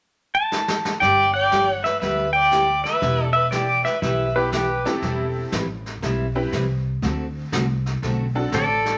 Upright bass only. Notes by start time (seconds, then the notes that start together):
1.02 G1
2.02 D2
3.02 E1
4.02 B1
5.02 E1
5.52 A1
6.03 B1
6.52 C2
7.02 D2
7.52 C2
8.02 B1
8.53 A1